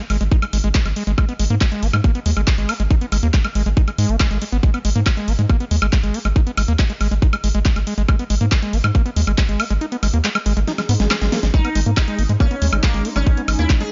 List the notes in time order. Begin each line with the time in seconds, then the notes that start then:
0.10 G#1 G#3, open hi-hat, high woodblock
0.21 G#1 G#3, closed hi-hat
0.32 D#4, kick, closed hi-hat
0.42 G#3, closed hi-hat, high woodblock
0.53 G#1 G#3, open hi-hat
0.64 G#1 G#3, closed hi-hat
0.75 G#3, kick, clap, closed hi-hat
0.85 G#1 G#3, closed hi-hat, high woodblock
0.96 G#3, open hi-hat
1.07 G#1 G#3, closed hi-hat
1.18 G#3, kick, closed hi-hat, high woodblock
1.29 B3, closed hi-hat
1.39 G#1 G#3, open hi-hat
1.50 G#2 A#3, closed hi-hat
1.61 G#3, kick, clap, closed hi-hat, high woodblock
1.72 G#3, closed hi-hat
1.83 G#1 B3, open hi-hat
1.93 G#2 G#3, closed hi-hat, high woodblock
2.04 A#3, kick, closed hi-hat
2.15 B3, closed hi-hat
2.26 D#2 G#3, open hi-hat
2.37 G#1 G#3, closed hi-hat, high woodblock
2.47 G#3, kick, clap, closed hi-hat
2.58 G#1 G#3, closed hi-hat
2.69 B3, open hi-hat, high woodblock
2.80 G#1 G#3, closed hi-hat
2.91 D#4, kick, closed hi-hat
3.01 B3, closed hi-hat
3.12 G#1 G#3, open hi-hat, high woodblock
3.23 D#2 A#3, closed hi-hat
3.34 G#3, kick, clap, closed hi-hat
3.44 G#3, closed hi-hat, high woodblock
3.55 G#1 G#3, open hi-hat
3.66 G#1 G#3, closed hi-hat
3.77 D#4, kick, closed hi-hat
3.88 G#3, closed hi-hat, high woodblock
3.98 G#2 G#3, open hi-hat
4.09 G#1 A#3, closed hi-hat
4.20 G#3, kick, clap, closed hi-hat, high woodblock
4.31 G#1 G#3, closed hi-hat
4.42 G#3, open hi-hat
4.52 G#1 B3, closed hi-hat
4.63 G#3, kick, closed hi-hat
4.74 B3, closed hi-hat, high woodblock
4.85 G#1 G#3, open hi-hat
4.96 G#2 A#3, closed hi-hat
5.06 G#3, kick, clap, closed hi-hat, high woodblock
5.17 G#3, closed hi-hat
5.28 G#1 B3, open hi-hat
5.39 G#2 G#3, closed hi-hat
5.50 A#3, kick, closed hi-hat, high woodblock
5.60 B3, closed hi-hat
5.71 D#2 G#3, open hi-hat
5.82 G#1 G#3, closed hi-hat, high woodblock
5.93 G#3, kick, clap, closed hi-hat
6.03 G#1 G#3, closed hi-hat
6.14 B3, open hi-hat
6.25 G#1 G#3, closed hi-hat, high woodblock
6.36 D#4, kick, closed hi-hat
6.47 B3, closed hi-hat
6.57 G#1 G#3, open hi-hat, high woodblock
6.68 D#2 A#3, closed hi-hat
6.79 G#3, kick, clap, closed hi-hat
6.90 G#3, closed hi-hat
7.01 G#1 G#3, open hi-hat, high woodblock
7.11 G#1 G#3, closed hi-hat
7.22 D#4, kick, closed hi-hat
7.33 G#3, closed hi-hat, high woodblock
7.44 G#1 G#3, open hi-hat
7.55 G#1 G#3, closed hi-hat
7.65 G#3, kick, clap, closed hi-hat
7.76 G#1 G#3, closed hi-hat, high woodblock
7.87 G#3, open hi-hat
7.98 G#1 G#3, closed hi-hat
8.08 G#3, kick, closed hi-hat, high woodblock
8.19 B3, closed hi-hat
8.30 G#1 G#3, open hi-hat
8.41 G#2 A#3, closed hi-hat
8.52 G#3, kick, clap, closed hi-hat, high woodblock
8.62 G#3, closed hi-hat
8.73 G#1 B3, open hi-hat
8.84 G#2 G#3, closed hi-hat, high woodblock
8.95 A#3, kick, closed hi-hat
9.06 B3, closed hi-hat
9.16 D#2 G#3, open hi-hat
9.27 G#1 G#3, closed hi-hat, high woodblock
9.38 G#3, kick, clap, closed hi-hat
9.49 G#1 G#3, closed hi-hat
9.60 B3, open hi-hat, high woodblock
9.70 G#1 G#3, closed hi-hat
9.81 D#4, closed hi-hat
9.92 B3, closed hi-hat
10.03 G#1 G#3, open hi-hat, high woodblock
10.14 D#2 A#3, closed hi-hat
10.24 G#3, clap, closed hi-hat
10.35 G#3, closed hi-hat, high woodblock
10.46 G#1 G#3, open hi-hat
10.57 G#1 G#3, closed hi-hat
10.68 D#4, snare, closed hi-hat, swell
10.78 G#3, snare, closed hi-hat, high woodblock
10.89 G#2 B3, open hi-hat
11.00 G#1 G#3, snare, closed hi-hat
11.11 G#3, snare, clap, closed hi-hat, high woodblock
11.21 G#1 G#3, snare, closed hi-hat
11.32 A#3, snare, open hi-hat
11.43 G#1 G#3, snare, closed hi-hat
11.54 G#3 D#4, kick, closed hi-hat
11.65 B3, closed hi-hat, high woodblock
11.75 G#1 G#3, open hi-hat
11.86 G#2 A#3, closed hi-hat
11.97 G#3 D#4, kick, clap, closed hi-hat, high woodblock
12.08 G#3, closed hi-hat
12.19 G#1 B3, open hi-hat
12.29 G#2 G#3, closed hi-hat
12.40 A#3 C#4, kick, closed hi-hat, high woodblock
12.51 B3, closed hi-hat
12.62 D#2 G#3, open hi-hat
12.73 G#1 G#3, closed hi-hat, high woodblock
12.83 G#3 A#3, kick, clap, closed hi-hat
12.94 G#1 G#3, closed hi-hat
13.05 B3, open hi-hat
13.16 G#1 G#3 C#4, closed hi-hat, high woodblock
13.27 D#4, kick, closed hi-hat
13.37 B3, closed hi-hat
13.48 G#1 G#3, open hi-hat, high woodblock
13.59 D#2 A#3 E4, closed hi-hat
13.70 G#3, kick, clap, closed hi-hat
13.80 G#3 G#4, closed hi-hat